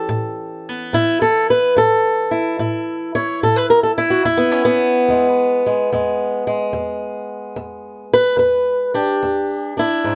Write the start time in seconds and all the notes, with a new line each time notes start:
Already playing: E3 C#4 G4 A4
0.09 A2
0.69 B3
0.93 A2 E4
1.22 A4
1.50 B4
1.76 A2 A4
2.31 E4
2.59 A2 E4
3.15 E4 C#5
3.43 A2 A4
3.56 B4
3.70 A#4
3.83 A4
3.98 E4
4.10 F#4
4.25 E2 E4
4.37 B3
4.52 C#4
4.65 B3
5.09 E2 G#3
5.66 G#3
5.92 E2 G#3
6.47 G#3
6.73 E2
7.56 E2
8.14 B4
8.37 E2 B4
8.94 D4 G4
9.23 E2
9.77 D4 E4
10.04 G#2